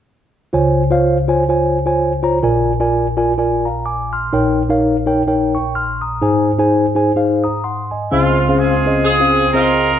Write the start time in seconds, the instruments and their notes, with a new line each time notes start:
0.53 tine electric piano C#2 C#3 F4 C5 C#5 G#5
0.91 tine electric piano F4 C5 C#5 F5
1.28 tine electric piano F4 C5 C#5 G#5
1.49 tine electric piano F4 C5 C#5 G#5
1.86 tine electric piano F4 C5 C#5 G#5
2.23 tine electric piano F4 C5 C#5 A#5
2.43 tine electric piano A#1 A#2 F4 A#4 D5 G#5
2.80 tine electric piano F4 A#4 D5 G#5
3.17 tine electric piano F4 A#4 D5 G#5
3.38 tine electric piano F4 A#4 D5 G#5
3.65 tine electric piano F5 A#5
3.86 tine electric piano G#5 D6
4.13 tine electric piano C6 F6
4.33 tine electric piano A#1 A#2 D#4 A#4 C#5 G5
4.69 tine electric piano D#4 A#4 C#5 F5
5.06 tine electric piano D#4 A#4 C#5 G5
5.27 tine electric piano D#4 A#4 C#5 G5
5.55 tine electric piano G5 C#6
5.75 tine electric piano C6 F6
6.01 tine electric piano A#5 D#6
6.22 tine electric piano G#2 D#4 G#4 C5 G#5
6.58 tine electric piano D#4 G#4 C5 G#5
6.95 tine electric piano D#4 G#4 C5 G#5
7.16 tine electric piano D#4 G#4 C5 F5
7.44 tine electric piano A#5 D#6
7.64 tine electric piano F#5 C6
7.91 tine electric piano D#5 G#5
8.11 tine electric piano C#2 C#3 C#4 G#4 C5 F5, horn section G#3 C4 F4
8.49 tine electric piano C#4 G#4 C5 F5
8.59 horn section C4 F4 G#4
8.86 tine electric piano C#4 G#4 C5 D#5
9.05 horn section C4 F4 G#4
9.20 tine electric piano C#4 G#4 C5 F5
9.54 tine electric piano C4 G#4 C5 D#5, horn section F4 A#4